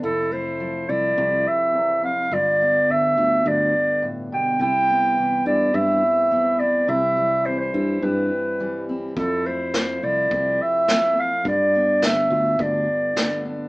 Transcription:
<<
  \new Staff \with { instrumentName = "Clarinet" } { \time 4/4 \key c \major \tempo 4 = 105 a'8 c''4 d''4 e''4 f''8 | d''4 e''4 d''4 r8 g''8 | g''4. d''8 e''4. d''8 | e''4 c''16 c''8. b'4. r8 |
a'8 c''4 d''4 e''4 f''8 | d''4 e''4 d''4. r8 | }
  \new Staff \with { instrumentName = "Steel-string acoustic guitar" } { \time 4/4 \key c \major << { e'8 a4 e'8 c'2 | f'8 b4 f'8 d'2 | e'8 b4 e'8 c'4 b8 c'8 | e'8 g4 e'8 c'4 g8 c'8 |
e'8 a4 e'8 c'4 a8 c'8 | f'8 b4 f'8 d'4 b8 d'8 | } \\ { f,4 f4 c4 e,8 f,8 | g,4 d4 g,4 a,8 b,8 | c4 e4 g,4 e4 | c4 e4 g,4 e4 |
f,4 f4 c4 f4 | g,4 d4 g,4 d4 | } >> }
  \new Staff \with { instrumentName = "Fingered electric bass" } { \clef bass \time 4/4 \key c \major f,,4. c,8 c,8 r4. | g,,4. d,8 d,8 r4. | c,4. g,8 g,8 r4. | c,4. g,8 g,8 r4. |
f,4. c,8 c,8 r4. | g,4. d,8 d,8 r4. | }
  \new DrumStaff \with { instrumentName = "Drums" } \drummode { \time 4/4 r4 r4 r4 r4 | r4 r4 r4 r4 | r4 r4 r4 r4 | r4 r4 r4 r4 |
bd4 sn4 bd4 sn4 | bd4 sn4 bd4 sn4 | }
>>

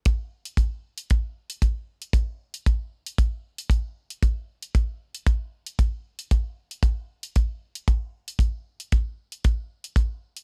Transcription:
\new DrumStaff \with { instrumentName = "Drums" } \drummode { \time 4/4 \tempo 4 = 115 <hh bd>8. hh16 <hh bd>8. hh16 <hh bd>8. hh16 <hh bd>8. hh16 | <hh bd>8. hh16 <hh bd>8. hh16 <hh bd>8. hh16 <hh bd>8. hh16 | <hh bd>8. hh16 <hh bd>8. hh16 <hh bd>8. hh16 <hh bd>8. hh16 | <hh bd>8. hh16 <hh bd>8. hh16 <hh bd>8. hh16 <hh bd>8. hh16 |
<hh bd>8. hh16 <hh bd>8. hh16 <hh bd>8. hh16 <hh bd>8. hh16 | }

